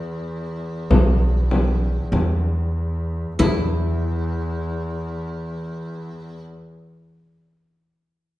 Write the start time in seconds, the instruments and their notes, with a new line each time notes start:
Already playing: double bass E2, oud E4
0.90 upright bass B1, frame drum
1.51 frame drum
2.12 upright bass E2, frame drum
3.39 double bass E2, upright bass E2, oud E4, frame drum